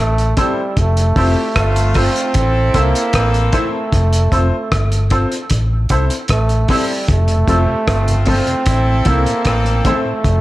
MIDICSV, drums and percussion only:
0, 0, Header, 1, 2, 480
1, 0, Start_track
1, 0, Tempo, 789681
1, 468, Time_signature, 4, 2, 24, 8
1, 6326, End_track
2, 0, Start_track
2, 0, Title_t, "Drums"
2, 111, Note_on_c, 9, 42, 43
2, 172, Note_off_c, 9, 42, 0
2, 223, Note_on_c, 9, 42, 78
2, 226, Note_on_c, 9, 36, 94
2, 284, Note_off_c, 9, 42, 0
2, 287, Note_off_c, 9, 36, 0
2, 466, Note_on_c, 9, 42, 65
2, 467, Note_on_c, 9, 36, 95
2, 527, Note_off_c, 9, 42, 0
2, 528, Note_off_c, 9, 36, 0
2, 589, Note_on_c, 9, 42, 59
2, 649, Note_off_c, 9, 42, 0
2, 705, Note_on_c, 9, 36, 94
2, 707, Note_on_c, 9, 46, 54
2, 766, Note_off_c, 9, 36, 0
2, 768, Note_off_c, 9, 46, 0
2, 947, Note_on_c, 9, 37, 116
2, 948, Note_on_c, 9, 36, 99
2, 950, Note_on_c, 9, 42, 83
2, 1008, Note_off_c, 9, 36, 0
2, 1008, Note_off_c, 9, 37, 0
2, 1011, Note_off_c, 9, 42, 0
2, 1070, Note_on_c, 9, 42, 57
2, 1131, Note_off_c, 9, 42, 0
2, 1181, Note_on_c, 9, 46, 77
2, 1187, Note_on_c, 9, 36, 80
2, 1242, Note_off_c, 9, 46, 0
2, 1248, Note_off_c, 9, 36, 0
2, 1312, Note_on_c, 9, 42, 47
2, 1373, Note_off_c, 9, 42, 0
2, 1423, Note_on_c, 9, 42, 82
2, 1428, Note_on_c, 9, 36, 99
2, 1484, Note_off_c, 9, 42, 0
2, 1489, Note_off_c, 9, 36, 0
2, 1666, Note_on_c, 9, 42, 72
2, 1668, Note_on_c, 9, 36, 74
2, 1727, Note_off_c, 9, 42, 0
2, 1729, Note_off_c, 9, 36, 0
2, 1794, Note_on_c, 9, 42, 59
2, 1855, Note_off_c, 9, 42, 0
2, 1902, Note_on_c, 9, 42, 79
2, 1907, Note_on_c, 9, 36, 89
2, 1916, Note_on_c, 9, 37, 86
2, 1963, Note_off_c, 9, 42, 0
2, 1968, Note_off_c, 9, 36, 0
2, 1977, Note_off_c, 9, 37, 0
2, 2032, Note_on_c, 9, 42, 44
2, 2092, Note_off_c, 9, 42, 0
2, 2143, Note_on_c, 9, 42, 73
2, 2145, Note_on_c, 9, 36, 93
2, 2204, Note_off_c, 9, 42, 0
2, 2206, Note_off_c, 9, 36, 0
2, 2386, Note_on_c, 9, 36, 96
2, 2388, Note_on_c, 9, 42, 72
2, 2447, Note_off_c, 9, 36, 0
2, 2449, Note_off_c, 9, 42, 0
2, 2508, Note_on_c, 9, 42, 59
2, 2569, Note_off_c, 9, 42, 0
2, 2625, Note_on_c, 9, 36, 86
2, 2629, Note_on_c, 9, 42, 64
2, 2686, Note_off_c, 9, 36, 0
2, 2690, Note_off_c, 9, 42, 0
2, 2867, Note_on_c, 9, 36, 116
2, 2868, Note_on_c, 9, 37, 106
2, 2871, Note_on_c, 9, 42, 86
2, 2928, Note_off_c, 9, 36, 0
2, 2929, Note_off_c, 9, 37, 0
2, 2932, Note_off_c, 9, 42, 0
2, 2989, Note_on_c, 9, 42, 55
2, 3050, Note_off_c, 9, 42, 0
2, 3102, Note_on_c, 9, 42, 72
2, 3107, Note_on_c, 9, 36, 79
2, 3163, Note_off_c, 9, 42, 0
2, 3168, Note_off_c, 9, 36, 0
2, 3231, Note_on_c, 9, 42, 49
2, 3292, Note_off_c, 9, 42, 0
2, 3341, Note_on_c, 9, 42, 83
2, 3348, Note_on_c, 9, 36, 97
2, 3401, Note_off_c, 9, 42, 0
2, 3408, Note_off_c, 9, 36, 0
2, 3581, Note_on_c, 9, 42, 64
2, 3587, Note_on_c, 9, 36, 75
2, 3642, Note_off_c, 9, 42, 0
2, 3648, Note_off_c, 9, 36, 0
2, 3709, Note_on_c, 9, 42, 58
2, 3769, Note_off_c, 9, 42, 0
2, 3818, Note_on_c, 9, 42, 82
2, 3826, Note_on_c, 9, 36, 88
2, 3832, Note_on_c, 9, 37, 91
2, 3879, Note_off_c, 9, 42, 0
2, 3887, Note_off_c, 9, 36, 0
2, 3892, Note_off_c, 9, 37, 0
2, 3946, Note_on_c, 9, 42, 39
2, 4007, Note_off_c, 9, 42, 0
2, 4062, Note_on_c, 9, 46, 80
2, 4065, Note_on_c, 9, 36, 87
2, 4123, Note_off_c, 9, 46, 0
2, 4126, Note_off_c, 9, 36, 0
2, 4305, Note_on_c, 9, 42, 68
2, 4307, Note_on_c, 9, 36, 99
2, 4366, Note_off_c, 9, 42, 0
2, 4367, Note_off_c, 9, 36, 0
2, 4424, Note_on_c, 9, 42, 55
2, 4484, Note_off_c, 9, 42, 0
2, 4544, Note_on_c, 9, 36, 79
2, 4546, Note_on_c, 9, 42, 64
2, 4605, Note_off_c, 9, 36, 0
2, 4607, Note_off_c, 9, 42, 0
2, 4787, Note_on_c, 9, 36, 108
2, 4788, Note_on_c, 9, 37, 111
2, 4790, Note_on_c, 9, 42, 81
2, 4848, Note_off_c, 9, 36, 0
2, 4848, Note_off_c, 9, 37, 0
2, 4851, Note_off_c, 9, 42, 0
2, 4910, Note_on_c, 9, 42, 57
2, 4971, Note_off_c, 9, 42, 0
2, 5018, Note_on_c, 9, 46, 73
2, 5027, Note_on_c, 9, 36, 73
2, 5079, Note_off_c, 9, 46, 0
2, 5088, Note_off_c, 9, 36, 0
2, 5148, Note_on_c, 9, 42, 48
2, 5209, Note_off_c, 9, 42, 0
2, 5262, Note_on_c, 9, 42, 81
2, 5267, Note_on_c, 9, 36, 97
2, 5323, Note_off_c, 9, 42, 0
2, 5328, Note_off_c, 9, 36, 0
2, 5501, Note_on_c, 9, 42, 71
2, 5507, Note_on_c, 9, 36, 80
2, 5562, Note_off_c, 9, 42, 0
2, 5568, Note_off_c, 9, 36, 0
2, 5631, Note_on_c, 9, 42, 51
2, 5692, Note_off_c, 9, 42, 0
2, 5742, Note_on_c, 9, 42, 71
2, 5747, Note_on_c, 9, 36, 86
2, 5756, Note_on_c, 9, 37, 84
2, 5803, Note_off_c, 9, 42, 0
2, 5808, Note_off_c, 9, 36, 0
2, 5817, Note_off_c, 9, 37, 0
2, 5871, Note_on_c, 9, 42, 44
2, 5931, Note_off_c, 9, 42, 0
2, 5986, Note_on_c, 9, 42, 88
2, 5987, Note_on_c, 9, 36, 96
2, 6047, Note_off_c, 9, 36, 0
2, 6047, Note_off_c, 9, 42, 0
2, 6227, Note_on_c, 9, 36, 81
2, 6227, Note_on_c, 9, 42, 66
2, 6288, Note_off_c, 9, 36, 0
2, 6288, Note_off_c, 9, 42, 0
2, 6326, End_track
0, 0, End_of_file